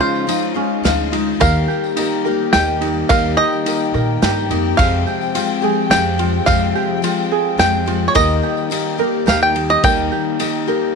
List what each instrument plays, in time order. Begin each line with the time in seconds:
Already playing: twelve-string acoustic guitar C#3 F3 G#3 D#4 F4, string section G#3 C#4 D#4 F4, ukulele C#4
0.00 ukulele F4, five-string banjo C5, tambourine
0.15 tambourine
0.27 twelve-string acoustic guitar F3 G#3 D#4 F4, ukulele D#4, ride, tambourine
0.43 tambourine
0.54 twelve-string acoustic guitar G#3 D#4 F4, ukulele C#4
0.83 upright bass D2, twelve-string acoustic guitar F3 G#3 D#4 F4, ukulele F4, snare, ride, tambourine
0.99 tambourine
1.12 twelve-string acoustic guitar G#3 D#4 F4, ukulele D#4, ride
1.40 upright bass D#2, twelve-string acoustic guitar D#3 A#3 D#4 G4, string section D#3 G3 A#3 G5, ukulele A#4, five-string banjo F5, kick, ride, tambourine
1.68 ukulele G4, tambourine
1.84 tambourine
1.96 twelve-string acoustic guitar D#3 A#3 D#4 G4, ukulele D#4, ride, tambourine
2.12 tambourine
2.25 twelve-string acoustic guitar A#3 D#4 G4, ukulele A#4
2.53 upright bass D#2, twelve-string acoustic guitar D#3 A#3 D#4, ukulele G4, five-string banjo G5, snare, ride, tambourine
2.57 twelve-string acoustic guitar G4
2.68 tambourine
2.81 twelve-string acoustic guitar A#3 D#4 G4, ukulele D#4, ride
3.09 upright bass D#2, twelve-string acoustic guitar D#3 A#3 D#4 G4, ukulele A#4, five-string banjo F5, kick, ride, tambourine
3.37 ukulele G4, five-string banjo D#5
3.52 tambourine
3.66 twelve-string acoustic guitar D#3 A#3 D#4 G4, ukulele D#4, ride, tambourine
3.94 upright bass A#2, ukulele A#4, tambourine
4.22 upright bass G2, twelve-string acoustic guitar D#3 A#3 D#4 G4, ukulele G4, snare, ride, tambourine
4.37 tambourine
4.50 upright bass F2, twelve-string acoustic guitar A#3 D#4 G4, ukulele D#4, ride, tambourine
4.77 twelve-string acoustic guitar F2 C3 F3 G#3 C4 G4, upright bass F2, string section F3 G#3 C4, five-string banjo F5, kick, ride, tambourine
5.07 ukulele G4, tambourine
5.21 tambourine
5.35 twelve-string acoustic guitar F3 G#3 C4 G4, ukulele F4, ride, tambourine
5.49 tambourine
5.62 twelve-string acoustic guitar F3 G#3 C4 G4, ukulele G#4
5.90 upright bass F2, twelve-string acoustic guitar F3 G#3 C4 G4, ukulele G4, five-string banjo G5, snare, ride, tambourine
6.05 tambourine
6.18 twelve-string acoustic guitar F3 G#3 C4 G4, ukulele F4, ride
6.46 twelve-string acoustic guitar F2 C3 F3 G#3 C4 G4, upright bass F2, five-string banjo F5, kick, ride, tambourine
6.75 ukulele G4, tambourine
7.02 twelve-string acoustic guitar F3 G#3 C4 G4, ukulele F4, ride, tambourine
7.17 tambourine
7.32 ukulele G#4
7.57 upright bass F2, twelve-string acoustic guitar F3 G#3 C4 G4, ukulele G4, five-string banjo G5, snare, ride, tambourine
7.74 tambourine
7.86 twelve-string acoustic guitar F3 G#3 C4 G4, ukulele F4, ride
8.08 five-string banjo C#5
8.14 upright bass D#2, twelve-string acoustic guitar D#3 A#3 D#4 G4, string section D#3 G3 A#3, ukulele A#4, five-string banjo D#5, kick, ride, tambourine
8.43 ukulele G4, tambourine
8.57 tambourine
8.70 twelve-string acoustic guitar D#3 A#3 D#4 G4, ukulele D#4, ride, tambourine
8.85 tambourine
8.98 twelve-string acoustic guitar A#3 D#4 G4, ukulele A#4
9.26 upright bass D#2, twelve-string acoustic guitar D#3 A#3 D#4 G4, ukulele G4, five-string banjo F5, snare, ride, tambourine
9.43 five-string banjo G5
9.54 twelve-string acoustic guitar A#3 D#4 G4, ukulele D#4, ride
9.70 five-string banjo D#5
9.83 upright bass D#2, twelve-string acoustic guitar D#3 A#3 D#4 G4, ukulele A#4, five-string banjo G5, kick, ride, tambourine
9.98 tambourine
10.11 ukulele G4, tambourine
10.39 twelve-string acoustic guitar D#3 A#3 D#4 G4, ukulele D#4, ride, tambourine
10.53 tambourine
10.67 twelve-string acoustic guitar A#3 D#4 G4, ukulele A#4